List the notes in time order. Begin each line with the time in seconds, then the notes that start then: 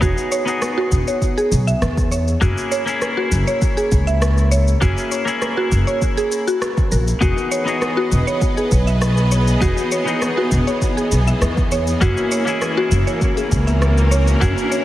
0.01 E1 B3 D#4 F#4 G#4, kick, shaker
0.18 shaker
0.32 C#5, shaker
0.45 B3 D#4 F#4, shaker
0.49 G#4
0.62 cross-stick, shaker
0.78 F#4
0.92 E1, kick, shaker
1.08 C#5, shaker
1.22 kick, shaker
1.38 G#4, shaker
1.52 B1, shaker
1.67 E5, shaker
1.82 E2, cross-stick, shaker
1.97 kick, shaker
2.12 C#5, shaker
2.28 shaker
2.41 F#1 A#3 C#4 E4 F#4 G#4, kick, shaker
2.58 shaker
2.71 C#5, shaker
2.86 A#3 C#4 E4 G#4, shaker
3.02 cross-stick, shaker
3.17 F#4
3.32 F#1, shaker
3.47 C#5, shaker
3.62 kick, shaker
3.77 G#4, shaker
3.92 C#2, kick, shaker
4.07 E5, shaker
4.22 cross-stick, shaker
4.38 shaker
4.52 C#5, shaker
4.68 shaker
4.81 F#1 A#3 C#4 E4 F#4 G#4, kick, shaker
4.98 shaker
5.11 C#5, shaker
5.25 A#3 C#4 E4 G#4, shaker
5.42 cross-stick, shaker
5.57 F#4
5.72 F#1, kick, shaker
5.87 C#5, shaker
6.02 kick, shaker
6.17 G#4, shaker
6.32 shaker
6.48 F#4, shaker
6.62 cross-stick, shaker
6.77 kick, shaker
6.92 A#1 A#4, shaker
7.08 shaker
7.21 E1 E3 B3 D#4 F#4 G#4, kick, shaker
7.38 shaker
7.45 B4
7.51 C#5, shaker
7.56 G#4 D#5
7.64 B3 D#4, shaker
7.68 F#4 G#4
7.82 cross-stick, shaker
7.97 F#4
8.12 E1, shaker
8.27 C#5, shaker
8.42 kick, shaker
8.57 G#4, shaker
8.72 B1, kick, shaker
8.87 E5, shaker
9.02 cross-stick, shaker
9.17 shaker
9.32 C#5, shaker
9.48 shaker
9.61 E1 B3 D#4 F#4 G#4, kick, shaker
9.77 shaker
9.92 C#5, shaker
10.06 B3 D#4 F#4, shaker
10.10 G#4
10.22 cross-stick, shaker
10.37 F#4
10.52 E1, kick, shaker
10.67 C#5, shaker
10.82 kick, shaker
10.97 G#4, shaker
11.12 B1, shaker
11.27 E5, shaker
11.41 E2, cross-stick, shaker
11.57 kick, shaker
11.72 C#5, shaker
11.87 shaker
12.01 F#1 A#3 C#4 E4 F#4 G#4, kick, riser, shaker
12.11 A#3
12.17 shaker
12.32 C#5, shaker
12.45 A#3 C#4 E4, shaker
12.49 G#4
12.62 cross-stick, shaker
12.77 F#4
12.83 C#4
12.92 F#1, shaker
13.07 C#5, shaker
13.17 F#4
13.22 kick, shaker
13.37 G#4, shaker
13.52 C#2, kick, shaker
13.59 A#4
13.67 E5, shaker
13.82 cross-stick, shaker
13.98 shaker
14.11 C#5, shaker
14.28 shaker
14.40 F#1 A#3 C#4 E4 F#4 G#4, kick, shaker
14.58 shaker
14.72 C#5, shaker